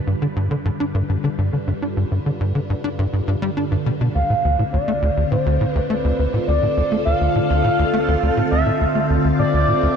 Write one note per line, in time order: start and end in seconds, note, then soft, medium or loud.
0.00 9.96 D3 medium
0.00 4.15 G3 medium
0.00 4.15 F4 medium
0.00 4.15 B4 medium
0.07 0.15 G2 medium
0.22 0.27 D3 medium
0.36 0.48 G2 medium
0.51 0.56 D3 medium
0.65 0.70 G2 loud
0.80 0.85 D4 medium
0.94 1.03 G2 loud
1.09 1.17 G2 medium
1.24 1.29 D3 medium
1.38 1.50 G2 loud
1.53 1.58 D3 medium
1.67 1.72 G2 loud
1.82 1.87 D4 medium
1.97 2.05 G2 medium
2.12 2.19 G2 medium
2.26 2.31 D3 medium
2.41 2.52 G2 loud
2.55 2.60 D3 medium
2.70 2.74 G2 medium
2.84 2.89 D4 medium
2.99 3.07 G2 loud
3.13 3.21 G2 medium
3.28 3.36 G2 loud
3.42 3.50 G3 loud
3.57 3.65 D4 medium
3.71 3.76 G2 loud
3.86 3.91 B2 medium
4.01 4.09 B2 loud
4.15 4.23 D2 medium
4.15 4.69 F5 loud
4.30 4.34 A2 medium
4.40 9.96 C4 medium
4.45 4.56 D2 loud
4.59 4.64 A2 medium
4.73 4.78 D2 loud
4.73 5.27 D5 loud
4.88 4.93 A3 medium
5.02 5.10 D2 loud
5.17 5.25 D2 medium
5.31 5.36 A2 medium
5.31 5.70 C5 loud
5.46 5.58 D2 loud
5.61 5.66 A2 medium
5.68 9.96 F4 medium
5.68 5.89 B4 loud
5.75 5.80 D2 loud
5.89 5.95 A3 medium
5.89 6.47 B4 loud
6.04 6.12 D2 loud
6.17 6.27 D2 medium
6.17 9.96 A4 medium
6.34 6.38 A2 medium
6.47 6.60 D2 loud
6.47 7.02 D5 loud
6.63 6.67 A2 medium
6.77 6.82 D2 loud
6.92 6.97 A3 medium
7.05 7.14 D2 loud
7.05 8.47 F5 loud
7.21 7.29 D2 medium
7.35 7.40 A2 medium
7.50 7.62 D2 loud
7.64 7.69 A2 medium
7.79 7.84 D2 loud
7.93 7.98 A3 medium
8.08 8.16 D2 loud
8.23 8.31 D2 medium
8.37 8.42 A2 medium
8.51 8.64 D2 loud
8.51 9.06 E5 medium
8.66 8.71 A2 medium
8.81 8.86 D2 loud
8.95 9.00 A3 medium
9.10 9.18 D2 loud
9.25 9.33 D2 medium
9.39 9.44 A2 medium
9.39 9.96 D5 loud
9.54 9.66 D2 loud
9.68 9.73 A2 medium
9.83 9.88 D2 loud